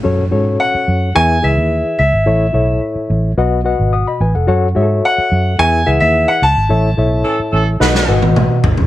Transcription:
<<
  \new Staff \with { instrumentName = "Grand piano" } { \time 4/4 \key e \major \tempo 4 = 108 r4 fis''4 gis''8 e''4 e''8~ | e''4 r2. | r4 fis''4 gis''8 e''16 e''8 fis''16 a''8~ | a''4. r2 r8 | }
  \new Staff \with { instrumentName = "Reed electric piano" } { \time 4/4 \key e \major << { r1 | r2. <fis'' dis'''>16 <dis'' b''>16 <b' gis''>16 <a' fis''>16~ | <a' fis''>16 r2. r8. | r1 | } \\ { <cis' fis' a' cis''>8 <cis' fis' a' cis''>4. <e' gis' b' e''>8 <e' gis' b' e''>4 r8 | <e' a' cis'' e''>8 <e' a' cis'' e''>4. <fis' b' dis'' fis''>8 <fis' b' dis'' fis''>4 r8 | <fis' a' cis'' fis''>8 <fis' gis' a' cis'' e''>4. <e' gis' b' e''>8 <e' gis' b' fis''>4 r8 | <e' a' cis'' e''>8 <e' a' cis'' e''>4. <fis' b' dis'' fis''>8 <fis' b' dis'' fis''>4 r8 | } >> }
  \new Staff \with { instrumentName = "Reed electric piano" } { \clef bass \time 4/4 \key e \major r2 e4. r8 | a,4. r8 b,4. r8 | r2 e4. r8 | a,4. r8 b,4. r8 | }
  \new Staff \with { instrumentName = "Horn section" } { \time 4/4 \key e \major r1 | r1 | r1 | r4 <e cis' a'>16 r16 <e cis' a'>16 r16 <fis dis' b'>8. r4 r16 | }
  \new Staff \with { instrumentName = "Fingered electric bass" } { \clef bass \time 4/4 \key e \major fis,8 gis,8 r8 fis,8 e,8 cis,16 dis,8 r16 cis,16 gis,,16 | a,,8 b,,8 r8 a,,8 b,,8. gis,,8 r16 a,,16 f,,16 | fis,8 gis,8 r8 fis,8 e,8 cis,16 dis,8 r16 cis,16 gis,,16 | a,,8 b,,8 r8 a,,8 b,,8 gis,,16 a,,8 r16 gis,,16 f,,16 | }
  \new DrumStaff \with { instrumentName = "Drums" } \drummode { \time 4/4 r4 r4 r4 r4 | r4 r4 r4 r4 | r4 r4 r4 r4 | r4 r4 sn16 sn8 tommh16 toml8 tomfh16 tomfh16 | }
>>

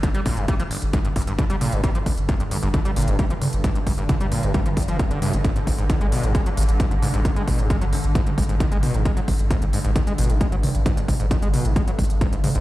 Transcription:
<<
  \new Staff \with { instrumentName = "Synth drone" } { \clef bass \time 4/4 \key c \minor \tempo 4 = 133 <g, d>1~ | <g, d>1~ | <g, d>1~ | <g, d>1~ |
<g, d>1~ | <g, d>1~ | <g, d>1 | }
  \new Staff \with { instrumentName = "Acid bass" } { \clef bass \time 4/4 \key c \minor d16 g16 bes,16 g,16 g16 f16 g,,16 r16 g,16 g,16 g,16 g,16 d16 g16 bes,16 g,16 | g16 f16 g,,16 r16 g,16 g,16 g,16 g,16 d16 g16 bes,16 g,16 g16 f16 g,,16 r16 | g,16 g,16 g,16 g,16 d16 g16 bes,16 g,16 g16 f16 f,16 f16 g,16 d16 g,16 f16 | aes,16 aes,16 aes,16 aes,16 ees16 aes16 ces16 aes,16 aes16 fis16 aes,,16 r16 aes,16 aes,16 aes,16 aes,16 |
ees16 aes16 ces16 aes,16 aes16 fis16 aes,,16 r16 aes,16 aes,16 aes,16 aes,16 ees16 aes16 ces16 aes,16 | aes16 fis16 aes,,16 r16 aes,16 aes,16 aes,16 aes,16 ees16 aes16 ces16 aes,16 aes16 fis16 aes,,16 r16 | aes,16 aes,16 aes,16 aes,16 ees16 aes16 ces16 aes,16 aes16 fis16 aes,,16 r16 aes,16 aes,16 aes,16 aes,16 | }
  \new Staff \with { instrumentName = "Sub bass" } { \clef bass \time 4/4 \key c \minor r8 g,,16 g,,16 r16 g,,16 r16 g,,16 r8 g,,16 g,,16 r16 g,,16 r16 g,,16 | r8 g,,16 g,,16 r16 g,,16 r16 g,,16 r8 g,,16 g,,16 r16 g,,16 r16 g,,16 | r8 g,,16 g,,16 r16 g,,16 r16 g,,16 r8 g,,16 g,,16 r16 g,,16 r16 g,,16 | r8 aes,,16 aes,,16 r16 aes,,16 r16 aes,,16 r8 aes,,16 aes,,16 r16 aes,,16 r16 aes,,16 |
r8 aes,,16 aes,,16 r16 aes,,16 r16 aes,,16 r8 aes,,16 aes,,16 r16 aes,,16 r16 aes,,16 | r8 aes,,16 aes,,16 r16 aes,,16 r16 aes,,16 r8 aes,,16 aes,,16 r16 aes,,16 r16 aes,,16 | r8 aes,,16 aes,,16 r16 aes,,16 r16 aes,,16 r8 aes,,16 aes,,16 r16 aes,,16 r16 aes,,16 | }
  \new DrumStaff \with { instrumentName = "Drums" } \drummode { \time 4/4 <hh bd>16 hh16 <hho bd>16 hh16 <hh bd>16 hh16 hho16 hh16 <hh bd>16 hh16 <hho bd>32 hh32 hh16 <hh bd>16 hh16 <hho toml>16 hh16 | <hh bd>16 hh16 <hho bd>16 hh16 <hh bd>16 hh16 hho16 hh16 <hh bd>16 hh16 hho32 hh32 hh16 <hh bd>16 hh16 <hho toml>16 hh16 | <hh bd>16 hh16 <hho bd>16 hh16 <hh bd toml>16 hh16 hho16 hh16 <hh bd>16 hh16 <hho bd>32 hh32 hh16 <hh bd>16 hh16 <hho toml>16 hh16 | <hh bd>16 hh16 <hho bd>16 hh16 <hh bd>16 hh16 hho16 hh16 <hh bd>16 hh16 hho32 hh32 hh16 <hh bd>16 hh16 <hho toml>16 hh16 |
<hh bd>16 hh16 <hho bd>16 hh16 <hh bd>16 hh16 hho16 hh16 <hh bd>16 hh16 <hho bd>32 hh32 hh16 <hh bd>16 hh16 <hho toml>16 hh16 | <hh bd>16 hh16 <hho bd>16 hh16 <hh bd>16 hh16 hho16 hh16 <hh bd>16 hh16 hho32 hh32 hh16 <hh bd>16 hh16 <hho toml>16 hh16 | <hh bd>16 hh16 <hho bd toml>16 hh16 <hh bd>16 hh16 <hho toml>16 hh16 <hh bd>16 hh16 <hho bd>32 hh32 hh16 <hh bd>16 hh16 <hho toml>16 hh16 | }
>>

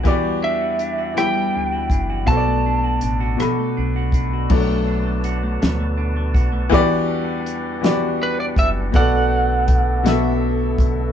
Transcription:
<<
  \new Staff \with { instrumentName = "Lead electric guitar" } { \time 6/8 \key e \minor \tempo 4. = 54 r8 e''4 g''4. | a''2 r4 | r2. | r2 b'16 d''16 e''8 |
fis''2 r4 | }
  \new Staff \with { instrumentName = "Grand piano" } { \time 6/8 \key e \minor <e b fis' g' d''>4 r8 <e g b e' e''>4 r8 | <b, b fis' a' c'' d''>4 r8 <b, b fis' a' b'>4 r8 | <fis a d'>2. | <e b fis' g' d''>4 r8 <e b fis' g' d''>4 r8 |
<b, b fis' a' d''>4 r8 <b, b fis' a' e''>4 r8 | }
  \new Staff \with { instrumentName = "Tonewheel organ" } { \time 6/8 \key e \minor r2. | r2. | <fis' b' d'' a''>2. | <e g d' fis''>2. |
<d a b a'>2. | }
  \new Staff \with { instrumentName = "Clean electric guitar" } { \time 6/8 \key e \minor e16 g16 d'16 fis'16 d'16 fis'16 e16 g16 d'16 fis'16 d'16 fis'16 | b,16 a16 d'16 fis'16 d'16 fis'16 b,16 a16 d'16 fis'16 d'16 fis'16 | b,16 a16 d'16 a16 fis'16 a16 b,16 a16 d'16 a16 fis'16 a16 | r2. |
r2. | }
  \new Staff \with { instrumentName = "Fingered electric bass" } { \clef bass \time 6/8 \key e \minor e,2 d,8 fis,,8 | b,,4 a,,8 r8 b,,4 | b,,4. d,4 b,,8 | e,2~ e,8 fis,,8 |
b,,2~ b,,8 b,,8 | }
  \new DrumStaff \with { instrumentName = "Drums" } \drummode { \time 6/8 <hh bd>4 hh8 <hh ss>4 <hh bd>8 | <hh bd>4 hh8 <hh ss>4 <hh bd>8 | <cymc bd>4 hh8 <hh sn>4 <hh bd>8 | <hh bd>4 hh8 <hh sn>4 <hh bd>8 |
<hh bd>4 <hh bd>8 <hh sn>4 <hh bd>8 | }
>>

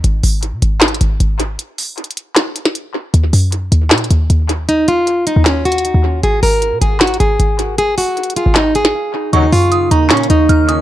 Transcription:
<<
  \new Staff \with { instrumentName = "Synth bell" } { \time 4/4 \key ees \minor \tempo 4 = 155 r1 | r1 | r1 | r1 |
r1 | r1 | des'''4 ees'''8 bes''8 des'''4 f'''8 ees'''8 | }
  \new Staff \with { instrumentName = "Nylon-string guitar" } { \time 4/4 \key ees \minor r1 | r1 | r1 | ees'8 f'4 ees'8 des'8 ges'4. |
aes'8 bes'4 aes'8 ges'8 aes'4. | aes'8 ges'4 f'8 ees'8 aes'4. | ees'8 f'4 ees'8 des'8 ees'4. | }
  \new Staff \with { instrumentName = "Ambient pad" } { \clef bass \time 4/4 \key ees \minor r1 | r1 | r1 | r1 |
r1 | r1 | <des ees bes ees'>1 | }
  \new Staff \with { instrumentName = "Brass ensemble" } { \clef bass \time 4/4 \key ees \minor r1 | r1 | r1 | r1 |
r1 | r1 | <ees, des ges>8 r2. r8 | }
  \new Staff \with { instrumentName = "808-style bass" } { \clef bass \time 4/4 \key ees \minor aes,,8 aes,,8. ces16 aes,,4 aes,,8 aes,,4 | r1 | ees,8 ges,4 ees,8 bes,8 ees,8 ees,4~ | ees,8. f,4 ees,4. ees,8. |
aes,,8 aes,,8. ces16 aes,,4 aes,,8 aes,,4~ | aes,,8. r4 aes,,4~ aes,,16 r4 | ees,8 ges,4 ees,8 bes,8 ees,8 ees,4 | }
  \new DrumStaff \with { instrumentName = "Drums" } \drummode { \time 4/4 hh8 hho8 hh8 hh8 \tuplet 3/2 { <hc hh sn>16 hh16 hh16 hh16 r16 r16 } hh8 hh8 | hh8 hho8 \tuplet 3/2 { hh16 hh16 hh16 hh16 r16 r16 } <hc hh sn>8 hh16 sn16 hh4 | hh8 hho8 hh8 hh8 \tuplet 3/2 { <hc hh sn>16 hh16 hh16 hh16 r16 r16 } hh8 hh8 | hh8 hh8 hh8 hh8 \tuplet 3/2 { <hc hh sn>16 r16 r16 hh16 hh16 hh16 } hh4 |
hh8 hho8 hh8 hh8 \tuplet 3/2 { <hc hh sn>16 hh16 hh16 hh16 r16 r16 } hh8 hh8 | hh8 hho8 \tuplet 3/2 { hh16 hh16 hh16 hh16 r16 r16 } <hc hh sn>8 hh16 sn16 r4 | hh8 hho8 hh8 hh8 \tuplet 3/2 { <hc hh sn>16 hh16 hh16 hh16 r16 r16 } hh8 hh8 | }
>>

